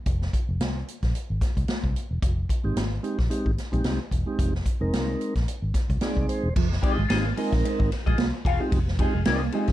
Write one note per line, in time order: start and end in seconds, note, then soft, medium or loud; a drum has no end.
0.06 0.27 F1 loud
0.06 kick loud
0.06 closed hi-hat medium
0.22 snare soft
0.33 kick medium
0.33 closed hi-hat medium
0.49 0.58 F1 medium
0.60 0.82 C2 medium
0.60 snare loud
0.60 closed hi-hat medium
0.88 closed hi-hat medium
1.02 1.12 A#1 medium
1.02 kick medium
1.02 snare soft
1.02 closed hi-hat soft
1.15 closed hi-hat medium
1.30 1.39 G#1 medium
1.41 kick medium
1.41 snare soft
1.41 closed hi-hat medium
1.57 1.66 C2 medium
1.57 kick medium
1.57 closed hi-hat soft
1.68 snare medium
1.68 closed hi-hat medium
1.84 1.93 C2 medium
1.84 kick medium
1.96 closed hi-hat medium
2.11 2.20 E1 medium
2.22 2.44 F1 medium
2.22 kick loud
2.22 closed hi-hat medium
2.49 kick medium
2.49 closed hi-hat medium
2.64 2.74 G#1 medium
2.64 2.83 G#3 medium
2.64 2.83 C4 medium
2.64 2.84 D#4 medium
2.64 2.84 G4 medium
2.76 2.98 G#1 medium
2.76 snare loud
2.76 closed hi-hat loud
3.03 3.18 G#3 medium
3.03 3.18 C4 medium
3.03 3.18 D#4 medium
3.03 3.19 G4 medium
3.03 closed hi-hat medium
3.19 3.28 A#1 medium
3.19 kick medium
3.19 snare soft
3.30 3.51 G#3 medium
3.30 3.51 C4 medium
3.30 3.51 D#4 medium
3.30 3.51 G4 medium
3.30 closed hi-hat medium
3.46 3.55 G#1 medium
3.46 kick medium
3.58 snare soft
3.58 closed hi-hat medium
3.72 3.82 A#1 medium
3.72 3.99 G#3 medium
3.72 3.99 C4 medium
3.72 3.99 D#4 medium
3.72 3.99 G4 loud
3.72 kick medium
3.72 closed hi-hat soft
3.84 3.97 C2 medium
3.84 snare loud
3.84 closed hi-hat medium
4.11 4.23 E1 medium
4.11 kick medium
4.11 closed hi-hat medium
4.26 4.53 G#3 medium
4.26 4.53 C4 medium
4.26 4.53 D#4 medium
4.26 4.54 G4 medium
4.39 4.60 F1 medium
4.39 kick loud
4.39 closed hi-hat medium
4.55 snare soft
4.66 kick medium
4.66 closed hi-hat medium
4.80 4.90 F1 medium
4.80 5.34 G#3 medium
4.80 5.34 C4 medium
4.80 5.34 D#4 medium
4.80 5.34 A#4 medium
4.93 5.14 C2 medium
4.93 snare loud
4.93 closed hi-hat medium
5.21 closed hi-hat medium
5.35 5.45 A#1 medium
5.35 kick medium
5.35 snare soft
5.35 closed hi-hat soft
5.48 closed hi-hat medium
5.62 5.72 G#1 medium
5.74 kick medium
5.74 snare soft
5.74 closed hi-hat medium
5.90 5.99 C2 loud
5.90 kick medium
5.90 closed hi-hat soft
6.01 6.49 G#3 medium
6.01 6.49 C4 medium
6.01 6.49 D#4 medium
6.01 6.49 G#4 medium
6.01 6.27 D5 medium
6.01 snare loud
6.01 closed hi-hat medium
6.17 6.26 C2 medium
6.17 kick medium
6.29 6.54 C5 medium
6.29 closed hi-hat medium
6.43 6.53 E1 medium
6.56 6.77 F1 loud
6.56 6.68 F3 medium
6.56 kick loud
6.56 crash loud
6.72 snare soft
6.82 6.98 G#3 medium
6.82 6.98 C4 medium
6.82 6.98 D#4 medium
6.82 7.03 F4 medium
6.82 6.98 G4 loud
6.82 7.03 G#4 medium
6.82 7.04 D#5 loud
6.82 muted clean electric guitar stroke soft
6.82 kick loud
6.82 ride medium
6.98 7.07 G#1 medium
6.98 7.08 G#3 medium
7.09 7.31 G#1 medium
7.09 7.25 G#3 medium
7.09 7.25 C4 medium
7.09 7.25 D#4 medium
7.09 7.29 F4 loud
7.09 7.25 G4 loud
7.09 7.24 G#4 loud
7.09 7.23 D#5 loud
7.09 snare loud
7.09 ride medium
7.25 7.35 A#3 medium
7.25 muted clean electric guitar stroke soft
7.36 7.90 G#3 medium
7.36 7.49 G#3 medium
7.36 7.90 C4 medium
7.36 7.90 D#4 medium
7.36 7.53 F4 medium
7.36 7.53 G#4 medium
7.36 7.91 A#4 loud
7.36 7.51 D#5 medium
7.36 open hi-hat medium
7.36 ride medium
7.52 7.62 A#1 medium
7.52 muted clean electric guitar stroke medium
7.52 kick medium
7.52 snare soft
7.52 ride soft
7.64 7.76 C4 medium
7.64 muted clean electric guitar stroke soft
7.64 hi-hat pedal medium
7.64 ride medium
7.79 7.89 G#1 loud
7.79 muted clean electric guitar stroke medium
7.79 kick medium
7.91 muted clean electric guitar stroke soft
7.91 snare soft
7.91 ride medium
8.06 8.16 A#1 loud
8.06 8.16 G#3 medium
8.06 8.25 F4 medium
8.06 8.25 G#4 medium
8.06 8.24 D#5 medium
8.06 kick medium
8.06 ride soft
8.18 8.30 C2 medium
8.18 8.30 A#3 medium
8.18 snare loud
8.18 ride medium
8.34 muted clean electric guitar stroke soft
8.45 8.57 E1 medium
8.45 8.65 F4 loud
8.45 8.61 G#4 loud
8.45 8.61 F5 loud
8.45 muted clean electric guitar stroke soft
8.45 kick loud
8.45 ride medium
8.60 8.79 G#3 loud
8.60 8.69 G#3 medium
8.60 8.79 C4 medium
8.60 8.79 D#4 medium
8.60 8.79 G4 loud
8.60 muted clean electric guitar stroke soft
8.72 9.05 F1 loud
8.72 8.84 F3 medium
8.72 kick loud
8.72 ride medium
8.88 snare soft
8.99 9.14 G#3 medium
8.99 9.14 C4 medium
8.99 9.14 D#4 medium
8.99 9.19 F4 medium
8.99 9.14 G4 loud
8.99 9.20 G#4 medium
8.99 9.20 D#5 loud
8.99 muted clean electric guitar stroke medium
8.99 kick medium
8.99 ride medium
9.15 9.24 F1 medium
9.15 9.24 G#3 medium
9.25 9.48 C2 loud
9.25 9.41 G#3 medium
9.25 9.41 C4 medium
9.25 9.41 D#4 medium
9.25 9.47 F4 medium
9.25 9.41 G#4 loud
9.25 9.41 A#4 loud
9.25 9.40 D#5 loud
9.25 muted clean electric guitar stroke soft
9.25 snare loud
9.25 ride medium
9.41 9.51 A#3 medium
9.41 muted clean electric guitar stroke soft
9.52 9.72 G#3 medium
9.52 9.66 G#3 medium
9.52 9.72 C4 medium
9.52 9.72 D#4 medium
9.52 9.69 F4 medium
9.52 9.72 G4 medium
9.52 9.68 G#4 medium
9.52 9.67 D#5 medium
9.52 ride medium
9.67 9.72 A#1 medium
9.67 muted clean electric guitar stroke soft
9.67 kick medium
9.67 snare soft
9.67 ride soft